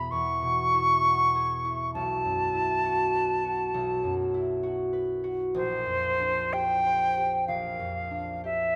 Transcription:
Already playing: E2 B2 B3 E4 G#4 B5
0.11 E2 C#6
0.42 B2
0.73 E4
1.04 B3
1.35 G#4
1.65 E4
1.94 B1 A5
2.25 F#2
2.54 E4
2.85 F#4
3.15 B4
3.45 F#4
3.74 B1
4.04 F#2
4.34 E4
4.63 F#4
4.93 B4
5.24 F#4
5.54 A#1 C5
5.86 F2
6.20 D4
6.53 G4 G5
6.86 C5
7.18 G4
7.48 A#1 F5
7.79 F2
8.11 D4
8.44 G4 E5

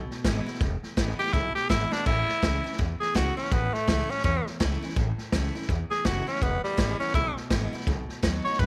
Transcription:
Already playing: B2
0.11 muted upright bass stroke, snare
0.24 G#1 E3 G#3 B3 E4, kick, snare, hi-hat pedal
0.46 B3 E4, snare
0.54 snare
0.61 E1 E2, kick, snare
0.83 muted upright bass stroke, snare
0.97 G#1 E3 G#3 B3 E4, kick, snare, hi-hat pedal
1.19 B3 E4 G4, muted upright bass stroke, snare
1.26 snare
1.33 B1 B2 E4, kick, snare
1.55 G4, muted upright bass stroke, snare
1.69 G#1 E3 G#3 B3 E4, kick, snare, hi-hat pedal
1.91 B3 D4 E4, snare
2.06 A1 A2 E4, kick, snare, crash
2.28 muted upright bass stroke, snare
2.42 C#2 E3 A3 C#4 E4, kick, snare, hi-hat pedal
2.64 C#4 E4, muted upright bass stroke, snare
2.72 snare
2.79 E2, kick, snare
3.00 G#4, muted upright bass stroke, snare
3.15 C#2 E3 A3 C#4 E4 F#4, kick, snare, hi-hat pedal
3.37 C#4 E4, muted upright bass stroke, snare
3.45 snare
3.51 A1 A2 B3, kick, snare
3.74 A3, snare
3.87 C#2 E3 A3 C#4 E4, kick, snare, hi-hat pedal
4.10 C#4 E4, snare
4.18 snare
4.24 E2 C#4, kick, snare
4.46 muted upright bass stroke, snare
4.60 C#2 E3 A3 C#4 E4, kick, snare, hi-hat pedal
4.82 C#4 E4, snare
4.89 snare
4.96 A1 A2, kick, snare
5.18 muted upright bass stroke, snare
5.32 C#2 E3 A3 C#4 E4, kick, snare, hi-hat pedal
5.55 C#4 E4, snare
5.62 snare
5.69 E2, kick, snare
5.90 G#4, muted upright bass stroke, snare
6.05 F#1 E3 A3 C#4 E4 F#4, kick, snare, hi-hat pedal
6.27 C#4 E4, snare
6.35 snare
6.42 E1 E2 B3, kick, snare
6.63 G3, muted upright bass stroke, snare
6.77 G#1 E3 G#3 B3 E4, kick, snare, hi-hat pedal
7.00 B3 C#4 E4, muted upright bass stroke, snare
7.07 snare
7.14 B1 B2 E4, kick, snare
7.36 muted upright bass stroke, snare
7.50 G#1 E3 G#3 B3 E4, kick, snare, hi-hat pedal
7.72 B3 E4, muted upright bass stroke, snare
7.80 snare
7.87 B1 B2, kick, snare
8.09 muted upright bass stroke, snare
8.22 D#2 F#3 B3 D#4 F#4, kick, snare, hi-hat pedal
8.45 D#4 F#4 C#5, snare
8.53 snare
8.59 F#2 B4, kick, snare

